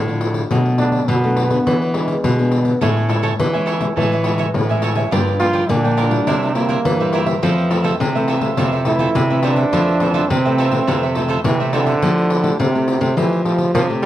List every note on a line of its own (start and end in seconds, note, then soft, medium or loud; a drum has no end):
0.00 0.43 A2 medium
0.00 0.48 D3 medium
0.07 0.46 F3 medium
0.07 0.47 D4 medium
0.07 pandeiro soft
0.21 pandeiro medium
0.34 pandeiro medium
0.51 1.06 B2 medium
0.51 0.75 F#3 soft
0.51 0.75 A3 medium
0.51 0.75 D4 medium
0.51 pandeiro medium
0.66 pandeiro soft
0.78 1.06 F#3 medium
0.78 1.06 A3 medium
0.78 1.11 D4 medium
0.78 1.07 D4 medium
0.78 pandeiro medium
0.92 pandeiro medium
1.08 1.63 F#2 medium
1.08 1.58 B2 medium
1.08 1.95 B3 medium
1.08 pandeiro medium
1.24 1.48 F#3 medium
1.24 1.48 A3 medium
1.24 1.48 D4 medium
1.24 pandeiro soft
1.37 pandeiro medium
1.50 1.90 B3 medium
1.50 1.90 D4 medium
1.50 1.90 G#4 medium
1.50 pandeiro medium
1.67 2.21 E3 medium
1.67 pandeiro medium
1.82 pandeiro soft
1.94 2.78 G#3 medium
1.94 2.22 B3 medium
1.94 2.22 D4 medium
1.94 2.22 G#4 medium
1.94 pandeiro medium
2.08 pandeiro medium
2.24 2.79 B2 medium
2.24 pandeiro medium
2.39 2.77 B3 medium
2.39 2.78 D4 medium
2.39 2.78 G#4 medium
2.39 pandeiro soft
2.52 pandeiro medium
2.65 pandeiro medium
2.81 3.37 A2 medium
2.81 2.99 G#3 medium
2.81 2.99 C#4 medium
2.81 2.99 E4 medium
2.81 3.07 A4 medium
2.81 3.08 C#5 medium
2.81 3.09 E5 medium
2.81 3.10 G#5 medium
2.81 pandeiro medium
2.97 pandeiro soft
3.09 3.37 G#3 medium
3.09 3.37 C#4 medium
3.09 3.37 E4 medium
3.09 3.21 A4 soft
3.09 3.22 C#5 medium
3.09 3.22 E5 medium
3.09 3.23 G#5 medium
3.09 pandeiro medium
3.23 3.33 A4 medium
3.23 3.33 C#5 medium
3.23 3.33 E5 medium
3.23 3.33 G#5 medium
3.23 pandeiro medium
3.39 3.94 E3 medium
3.39 pandeiro medium
3.53 3.78 G#3 medium
3.53 3.78 C#4 medium
3.53 3.79 E4 medium
3.53 3.66 C#5 soft
3.53 3.66 E5 soft
3.53 3.67 G#5 soft
3.53 pandeiro soft
3.66 3.95 A4 medium
3.66 3.95 C#5 medium
3.66 3.95 E5 medium
3.66 3.96 G#5 medium
3.66 pandeiro medium
3.81 3.92 G#3 medium
3.81 3.92 C#4 medium
3.81 3.92 E4 medium
3.81 pandeiro medium
3.96 4.52 A2 medium
3.96 4.46 E3 medium
3.96 4.14 G#3 medium
3.96 4.14 C#4 medium
3.96 4.14 E4 medium
3.96 4.10 A4 medium
3.96 4.10 C#5 medium
3.96 4.10 E5 medium
3.96 4.11 G#5 medium
3.96 pandeiro medium
4.12 4.24 C#5 soft
4.12 4.25 E5 soft
4.12 4.25 G#5 soft
4.12 pandeiro soft
4.24 4.64 G#3 medium
4.24 4.64 C#4 medium
4.24 4.64 E4 medium
4.24 4.38 A4 soft
4.24 4.38 C#5 soft
4.24 4.38 E5 soft
4.24 4.39 G#5 soft
4.24 pandeiro medium
4.38 4.48 A4 medium
4.38 4.49 C#5 medium
4.38 4.49 E5 medium
4.38 4.49 G#5 medium
4.38 pandeiro medium
4.54 5.04 A2 medium
4.54 5.09 E3 medium
4.54 pandeiro medium
4.69 5.08 G#3 medium
4.69 5.08 C#4 medium
4.69 5.09 E4 medium
4.69 4.82 C#5 soft
4.69 4.83 E5 soft
4.69 4.82 G#5 soft
4.69 pandeiro soft
4.82 4.96 A4 medium
4.82 4.96 C#5 medium
4.82 4.96 E5 medium
4.82 4.95 G#5 medium
4.82 pandeiro medium
4.95 5.11 C#5 soft
4.95 5.11 E5 soft
4.95 5.10 G#5 medium
4.95 pandeiro medium
5.11 5.67 G2 medium
5.11 5.29 F3 medium
5.11 5.29 A#3 medium
5.11 5.30 D4 medium
5.11 5.39 F4 medium
5.11 5.40 A#4 medium
5.11 5.40 D5 medium
5.11 5.41 G5 medium
5.11 pandeiro medium
5.27 pandeiro soft
5.40 5.79 F3 medium
5.40 5.79 A#3 medium
5.40 5.79 D4 medium
5.40 5.72 F4 loud
5.40 5.52 F4 medium
5.40 5.53 A#4 medium
5.40 5.53 D5 medium
5.40 5.54 G5 medium
5.40 pandeiro medium
5.53 5.63 F4 medium
5.53 5.64 A#4 medium
5.53 5.64 D5 medium
5.53 5.64 G5 medium
5.53 pandeiro medium
5.69 6.19 A#2 loud
5.69 6.24 D3 medium
5.69 6.55 D4 medium
5.69 pandeiro medium
5.84 6.09 F3 medium
5.84 6.09 A#3 medium
5.84 6.09 D4 medium
5.84 5.97 A#4 soft
5.84 5.97 D5 soft
5.84 5.98 G5 soft
5.84 pandeiro soft
5.97 6.25 F4 medium
5.97 6.26 A#4 medium
5.97 6.26 D5 medium
5.97 6.26 G5 medium
5.97 pandeiro medium
6.10 6.50 G3 medium
6.10 6.51 A#3 medium
6.10 6.51 E4 medium
6.10 pandeiro medium
6.27 6.82 C3 medium
6.27 6.40 E4 medium
6.27 6.41 A#4 medium
6.27 6.41 C5 medium
6.27 6.41 E5 medium
6.27 pandeiro medium
6.42 6.55 A#4 soft
6.42 6.56 C5 soft
6.42 6.56 E5 soft
6.42 pandeiro soft
6.55 6.82 G3 medium
6.55 6.83 A#3 medium
6.55 7.38 A#3 medium
6.55 6.68 E4 medium
6.55 6.83 E4 medium
6.55 6.68 A#4 soft
6.55 6.69 C5 medium
6.55 6.69 E5 medium
6.55 pandeiro medium
6.68 6.79 E4 medium
6.68 6.79 A#4 medium
6.68 6.79 C5 medium
6.68 6.79 E5 medium
6.68 pandeiro medium
6.84 7.39 G2 medium
6.84 7.34 E3 loud
6.84 pandeiro medium
7.00 7.38 G3 medium
7.00 7.38 A#3 medium
7.00 7.39 E4 medium
7.00 7.13 A#4 soft
7.00 7.14 C5 soft
7.00 7.13 E5 soft
7.00 pandeiro soft
7.13 7.27 E4 medium
7.13 7.27 A#4 medium
7.13 7.26 C5 medium
7.13 7.25 E5 medium
7.13 pandeiro medium
7.26 7.42 A#4 soft
7.26 7.41 C5 soft
7.26 7.40 E5 soft
7.26 pandeiro medium
7.42 7.97 F2 medium
7.42 7.67 E3 medium
7.42 7.92 F3 medium
7.42 7.67 A3 medium
7.42 7.67 C4 medium
7.42 7.69 F4 medium
7.42 7.70 A4 medium
7.42 7.71 C5 medium
7.42 7.71 E5 medium
7.42 pandeiro medium
7.58 pandeiro soft
7.70 8.09 E3 medium
7.70 8.10 A3 medium
7.70 8.10 C4 medium
7.70 7.83 F4 soft
7.70 7.83 A4 medium
7.70 7.83 C5 medium
7.70 7.84 E5 medium
7.70 pandeiro medium
7.84 7.94 F4 medium
7.84 7.94 A4 medium
7.84 7.94 C5 medium
7.84 7.94 E5 medium
7.84 pandeiro medium
8.00 8.55 C3 medium
8.00 pandeiro medium
8.15 8.39 E3 medium
8.15 8.39 A3 medium
8.15 8.39 C4 medium
8.15 8.27 A4 soft
8.15 8.28 C5 soft
8.15 8.28 E5 soft
8.15 pandeiro soft
8.28 8.56 F4 medium
8.28 8.56 A4 medium
8.28 8.57 C5 medium
8.28 8.57 E5 medium
8.28 pandeiro medium
8.41 8.52 E3 medium
8.41 8.52 A3 medium
8.41 8.53 C4 medium
8.41 pandeiro medium
8.57 9.12 F2 medium
8.57 9.07 C3 medium
8.57 8.75 E3 medium
8.57 8.75 A3 medium
8.57 8.75 C4 medium
8.57 8.71 F4 medium
8.57 8.71 A4 medium
8.57 8.72 C5 medium
8.57 8.72 E5 medium
8.57 pandeiro medium
8.73 8.85 A4 soft
8.73 8.86 C5 soft
8.73 8.86 E5 soft
8.73 pandeiro soft
8.85 9.25 E3 medium
8.85 9.25 A3 medium
8.85 9.25 C4 medium
8.85 9.40 E4 medium
8.85 8.98 F4 soft
8.85 8.99 A4 medium
8.85 8.99 C5 soft
8.85 9.00 E5 medium
8.85 pandeiro medium
8.99 9.09 F4 medium
8.99 9.09 A4 medium
8.99 9.10 C5 medium
8.99 9.10 E5 medium
8.99 pandeiro medium
9.15 9.70 C3 medium
9.15 pandeiro medium
9.30 9.69 E3 medium
9.30 9.69 A3 medium
9.30 9.69 C4 medium
9.30 9.43 A4 soft
9.30 9.43 C5 soft
9.30 9.43 E5 medium
9.30 pandeiro soft
9.43 10.32 D4 loud
9.43 9.57 F4 medium
9.43 9.57 A4 medium
9.43 9.57 C5 medium
9.43 9.56 E5 medium
9.43 pandeiro medium
9.56 9.72 A4 soft
9.56 9.71 C5 medium
9.56 9.71 E5 soft
9.56 pandeiro medium
9.73 10.27 F2 medium
9.73 9.90 E3 medium
9.73 10.22 F3 medium
9.73 9.90 A3 medium
9.73 9.90 C4 medium
9.73 9.99 F4 medium
9.73 10.00 A4 medium
9.73 10.01 C5 medium
9.73 10.01 E5 medium
9.73 pandeiro medium
9.88 pandeiro soft
10.00 10.39 E3 medium
10.00 10.40 A3 medium
10.00 10.40 C4 medium
10.00 10.13 F4 medium
10.00 10.13 A4 medium
10.00 10.14 C5 medium
10.00 10.14 E5 medium
10.00 pandeiro medium
10.14 10.24 F4 medium
10.14 10.24 A4 medium
10.14 10.24 C5 medium
10.14 10.25 E5 medium
10.14 pandeiro medium
10.30 10.85 C3 medium
10.30 11.17 C4 medium
10.30 pandeiro medium
10.45 10.69 E3 medium
10.45 10.69 A3 medium
10.45 10.70 C4 medium
10.45 10.58 A4 soft
10.45 10.58 C5 soft
10.45 10.58 E5 soft
10.45 pandeiro soft
10.58 10.86 F4 medium
10.58 10.87 A4 medium
10.58 10.87 C5 medium
10.58 10.87 E5 medium
10.58 pandeiro medium
10.71 10.82 E3 medium
10.71 10.83 A3 medium
10.71 10.83 C4 medium
10.71 pandeiro medium
10.87 11.43 F2 medium
10.87 11.36 C3 medium
10.87 11.05 E3 medium
10.87 11.05 A3 medium
10.87 11.05 C4 medium
10.87 11.01 F4 medium
10.87 11.01 A4 medium
10.87 11.01 C5 medium
10.87 11.02 E5 medium
10.87 pandeiro medium
11.03 11.15 A4 soft
11.03 11.16 C5 soft
11.03 11.16 E5 soft
11.03 pandeiro soft
11.15 11.43 E3 medium
11.15 11.44 A3 medium
11.15 11.44 C4 medium
11.15 11.28 F4 soft
11.15 11.28 A4 soft
11.15 11.29 C5 medium
11.15 11.29 E5 medium
11.15 pandeiro medium
11.28 11.39 F4 medium
11.28 11.39 A4 medium
11.28 11.39 C5 medium
11.28 11.40 E5 medium
11.28 pandeiro medium
11.44 12.00 C3 medium
11.44 11.58 E3 medium
11.44 pandeiro medium
11.60 11.98 E3 medium
11.60 11.98 A3 medium
11.60 11.99 C4 medium
11.60 11.73 A4 soft
11.60 11.73 C5 soft
11.60 11.73 E5 soft
11.60 pandeiro soft
11.73 12.56 D3 loud
11.73 11.87 F4 medium
11.73 11.87 A4 medium
11.73 11.86 C5 medium
11.73 11.85 E5 medium
11.73 pandeiro medium
11.86 12.01 A4 soft
11.86 12.01 C5 soft
11.86 12.00 E5 soft
11.86 pandeiro medium
12.02 12.57 F3 medium
12.02 12.41 A3 medium
12.02 12.41 E4 medium
12.02 12.41 G4 medium
12.02 pandeiro medium
12.18 pandeiro soft
12.30 pandeiro medium
12.43 12.69 A3 medium
12.43 12.69 E4 medium
12.43 12.69 G4 medium
12.43 pandeiro medium
12.60 13.15 C3 medium
12.60 13.19 C3 medium
12.60 pandeiro medium
12.75 12.99 A3 medium
12.75 12.99 E4 medium
12.75 12.99 G4 medium
12.75 pandeiro soft
12.88 pandeiro medium
13.01 13.14 C3 medium
13.01 13.12 A3 medium
13.01 13.12 E4 medium
13.01 13.12 G4 medium
13.01 pandeiro medium
13.17 13.44 E3 medium
13.17 13.72 F3 medium
13.17 13.41 A3 medium
13.17 13.41 E4 medium
13.17 13.42 G4 medium
13.17 pandeiro medium
13.33 pandeiro soft
13.45 13.72 F3 medium
13.45 13.72 A3 medium
13.45 13.73 E4 medium
13.45 13.73 G4 medium
13.45 pandeiro medium
13.58 pandeiro medium
13.74 14.06 C3 medium
13.74 13.88 F3 loud
13.74 pandeiro medium
13.89 14.06 A3 medium
13.89 14.06 E4 medium
13.89 14.06 G4 medium
13.89 pandeiro soft
14.02 14.06 G3 loud
14.02 pandeiro medium